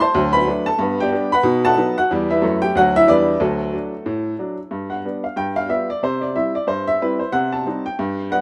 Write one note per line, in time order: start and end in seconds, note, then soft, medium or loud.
0.00 0.31 C5 medium
0.00 0.31 A5 medium
0.00 0.33 C6 loud
0.15 0.42 D2 loud
0.15 0.34 F#3 medium
0.33 0.64 B4 medium
0.33 0.65 B5 loud
0.47 0.65 F#3 medium
0.47 0.65 A3 medium
0.47 0.66 D4 medium
0.66 0.79 A4 medium
0.66 0.79 A5 loud
0.79 1.06 G2 medium
0.79 0.99 B3 medium
1.00 1.30 G4 medium
1.00 1.30 D5 medium
1.00 1.32 G5 medium
1.12 1.30 G3 medium
1.12 1.30 B3 medium
1.12 1.30 D4 medium
1.32 1.63 B4 medium
1.32 1.63 F#5 medium
1.32 1.64 B5 loud
1.43 1.71 B2 loud
1.43 1.63 D#4 medium
1.65 1.95 A4 medium
1.65 1.95 F#5 medium
1.65 1.97 A5 loud
1.77 1.95 F#3 medium
1.77 1.95 B3 medium
1.77 1.96 D#4 medium
1.98 2.11 F#4 medium
1.98 2.11 F#5 loud
2.11 2.37 E2 medium
2.11 2.37 G3 medium
2.30 2.60 E4 medium
2.30 2.60 B4 medium
2.30 2.62 E5 medium
2.42 2.68 F#2 medium
2.42 2.69 A3 medium
2.62 2.75 G4 medium
2.62 2.75 G5 loud
2.75 3.01 D2 medium
2.75 3.03 F#3 medium
2.75 2.94 F#4 loud
2.75 2.95 F#5 loud
2.96 3.08 E4 medium
2.96 3.09 E5 loud
3.07 3.34 E2 medium
3.07 3.35 G3 medium
3.07 3.39 D4 medium
3.07 3.39 B4 medium
3.07 3.41 D5 loud
3.40 3.68 D2 medium
3.40 3.59 F#3 medium
3.40 4.54 A3 medium
3.40 4.54 F#4 medium
3.40 4.57 A4 medium
3.73 3.91 F#3 soft
3.73 3.91 D4 soft
4.06 4.34 A2 medium
4.39 4.57 F#3 medium
4.39 4.57 D4 soft
4.71 4.99 G2 medium
4.90 5.23 F#5 medium
5.05 5.23 G3 soft
5.05 5.23 B3 soft
5.05 5.23 D4 soft
5.24 5.37 F5 medium
5.36 5.64 G2 medium
5.36 5.56 G5 medium
5.56 5.70 F5 medium
5.68 5.86 G3 soft
5.68 5.87 B3 soft
5.68 5.87 F4 soft
5.68 5.89 E5 medium
5.90 6.03 D5 medium
6.03 6.30 C3 medium
6.03 6.22 C5 medium
6.21 6.35 D5 medium
6.35 6.53 G3 soft
6.35 6.54 C4 soft
6.35 6.54 E4 soft
6.35 6.54 E5 medium
6.55 6.68 D5 medium
6.67 6.95 G2 medium
6.67 6.87 C5 medium
6.87 7.01 E5 medium
7.01 7.19 G3 soft
7.01 7.19 C4 medium
7.01 7.20 E4 medium
7.01 7.20 B4 medium
7.19 7.33 C5 medium
7.32 7.61 C3 medium
7.32 7.52 F#5 medium
7.52 7.85 A5 medium
7.66 7.84 G3 soft
7.66 7.84 C4 soft
7.66 7.85 D#4 soft
7.86 8.32 G5 medium
7.99 8.27 G2 medium
8.31 8.41 G3 medium
8.31 8.41 B3 medium
8.31 8.41 D4 medium
8.31 8.41 F#5 medium